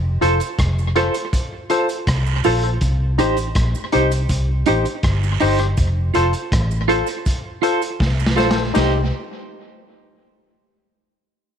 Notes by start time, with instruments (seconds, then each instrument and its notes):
Already playing: fingered electric bass F1
0.21 fingered electric bass F1, synth stab F4 A4 C5, clean electric guitar F4 A4 C5, closed hi-hat, cabasa
0.40 closed hi-hat, cabasa
0.59 fingered electric bass F1, kick, cross-stick, closed hi-hat
0.79 cabasa
0.95 synth stab F4 A4 C5, clean electric guitar F4 A4 C5, cross-stick, closed hi-hat
1.14 closed hi-hat, cabasa
1.33 kick, closed hi-hat, cabasa
1.70 synth stab F4 A4 C5, clean electric guitar F4 A4 C5, closed hi-hat, cabasa
1.89 closed hi-hat, cabasa
2.07 fingered electric bass C2, kick, cross-stick, closed hi-hat, long guiro
2.26 cabasa
2.44 fingered electric bass A#1, synth stab F4 A4 C5, clean electric guitar F4 A4 C5, open hi-hat, cabasa
2.63 synth stab A4 C5, closed hi-hat
2.81 fingered electric bass C2, kick, closed hi-hat, cabasa
3.18 fingered electric bass A1, synth stab D#4 G4 C5, clean electric guitar D#4 G4 C5, closed hi-hat, cabasa
3.37 closed hi-hat, cabasa
3.55 fingered electric bass A#1, kick, cross-stick, closed hi-hat
3.75 cabasa
3.92 fingered electric bass C2, synth stab D#4 G4 C5, clean electric guitar D#4 G4 C5, closed hi-hat
4.11 closed hi-hat, cabasa
4.29 fingered electric bass C2, kick, closed hi-hat, cabasa
4.66 fingered electric bass A1, clean electric guitar D#4 G4 C5, synth stab D#4 G4 C5, closed hi-hat, cabasa
4.85 closed hi-hat, cabasa
5.03 fingered electric bass G1, kick, cross-stick, closed hi-hat, long guiro
5.23 cabasa
5.40 fingered electric bass G1, synth stab D#4 G4 C5, clean electric guitar D#4 G4 C5, open hi-hat, cabasa
5.58 synth stab G4 C5, cross-stick, closed hi-hat
5.77 fingered electric bass F1, kick, closed hi-hat, cabasa
6.14 fingered electric bass F1, clean electric guitar F4 A4 C5, synth stab F4 A4 C5, closed hi-hat, cabasa
6.33 closed hi-hat, cabasa
6.52 fingered electric bass A1, kick, cross-stick, closed hi-hat
6.71 cabasa
6.88 clean electric guitar F4 A4 C5, synth stab F4 A4 C5, closed hi-hat
7.07 closed hi-hat, cabasa
7.26 kick, closed hi-hat, cabasa
7.62 clean electric guitar F4 A4 C5, synth stab F4 A4 C5, closed hi-hat, cabasa
7.82 closed hi-hat, cabasa
8.00 fingered electric bass C2, kick, snare, long guiro
8.20 cabasa
8.26 snare
8.36 fingered electric bass A#1, clean electric guitar F4 A4 C5, synth stab F4 A4 C5, snare, cabasa
8.51 snare
8.56 synth stab A4 C5
8.74 fingered electric bass C2, synth stab D#4 G4 C5, clean electric guitar D#4 G4 C5, snare, crash, cabasa